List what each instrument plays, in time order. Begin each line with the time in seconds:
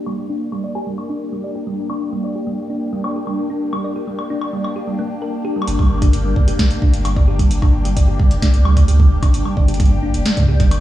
Already playing: analog synth pad A#3 D4 G4
0.06 synth arpeggio sound G3, high woodblock
0.29 synth arpeggio sound D4
0.52 synth arpeggio sound G3, high woodblock
0.64 synth arpeggio sound D5
0.75 synth arpeggio sound G4, high woodblock
0.87 synth arpeggio sound G3
0.98 high woodblock
1.10 synth arpeggio sound D4
1.32 synth arpeggio sound G3
1.44 synth arpeggio sound D5
1.55 synth arpeggio sound G4
1.67 synth arpeggio sound G3
1.90 synth arpeggio sound D4, high woodblock
2.13 synth arpeggio sound G3
2.24 synth arpeggio sound D5
2.35 synth arpeggio sound G4
2.47 synth arpeggio sound G3
2.70 synth arpeggio sound D4
2.93 synth arpeggio sound G3
3.04 synth arpeggio sound D5, high woodblock
3.16 synth arpeggio sound G4
3.27 synth arpeggio sound G3, high woodblock
3.50 synth arpeggio sound D4
3.73 synth arpeggio sound G3, high woodblock
3.84 synth arpeggio sound D5
3.96 synth arpeggio sound G4
4.07 synth arpeggio sound G3
4.19 high woodblock
4.30 synth arpeggio sound D4
4.41 high woodblock
4.53 synth arpeggio sound G3
4.64 synth arpeggio sound D5, high woodblock
4.76 synth arpeggio sound G4
4.87 synth arpeggio sound G3
4.99 synth arpeggio sound A#3
5.22 synth arpeggio sound A#4
5.45 synth arpeggio sound G4
5.56 synth arpeggio sound G3
5.62 high woodblock
5.68 sub bass G1, synth arpeggio sound G4, closed hi-hat
5.79 synth arpeggio sound G3, kick, high woodblock
5.83 high woodblock
5.87 sub bass G1, high woodblock
5.90 high woodblock
5.94 high woodblock
5.98 synth arpeggio sound D4, kick, closed hi-hat, high woodblock
6.13 closed hi-hat
6.25 synth arpeggio sound G3
6.36 sub bass G1, synth arpeggio sound D5, kick
6.48 sub bass F1, synth arpeggio sound G4, closed hi-hat
6.59 synth arpeggio sound G3, kick, snare, closed hi-hat
6.71 closed hi-hat
6.82 synth arpeggio sound D4, kick
6.94 sub bass G1, closed hi-hat
7.05 synth arpeggio sound G3, closed hi-hat, high woodblock
7.16 synth arpeggio sound D5, kick
7.28 synth arpeggio sound G4
7.39 synth arpeggio sound G3, kick, closed hi-hat
7.51 sub bass G1, closed hi-hat
7.62 synth arpeggio sound D4, kick, high woodblock
7.74 sub bass G1
7.85 synth arpeggio sound G3, closed hi-hat
7.97 synth arpeggio sound D5, kick, closed hi-hat
8.08 synth arpeggio sound G4
8.19 sub bass G1, synth arpeggio sound G3, kick
8.31 sub bass F1, closed hi-hat
8.42 synth arpeggio sound D4, kick, snare, closed hi-hat
8.54 sub bass C2, closed hi-hat
8.65 sub bass D2, synth arpeggio sound G3, high woodblock
8.77 synth arpeggio sound D5, kick, closed hi-hat
8.88 synth arpeggio sound G4, closed hi-hat
9.00 synth arpeggio sound G3, kick
9.11 sub bass F1
9.23 synth arpeggio sound D4, kick, closed hi-hat, high woodblock
9.34 sub bass G1, closed hi-hat
9.45 synth arpeggio sound G3, high woodblock
9.57 sub bass G1, synth arpeggio sound D5, kick
9.68 synth arpeggio sound G4, closed hi-hat
9.74 closed hi-hat
9.80 synth arpeggio sound G3, kick, closed hi-hat
9.86 closed hi-hat
10.03 sub bass G1, synth arpeggio sound D4
10.14 sub bass F1, closed hi-hat
10.26 synth arpeggio sound G3, snare, closed hi-hat
10.37 synth arpeggio sound D5, kick, closed hi-hat
10.40 kick
10.43 kick
10.46 kick
10.48 synth arpeggio sound G4, kick
10.51 kick
10.54 kick
10.57 sub bass G1, kick, closed hi-hat
10.60 synth arpeggio sound G3, kick
10.71 closed hi-hat, high woodblock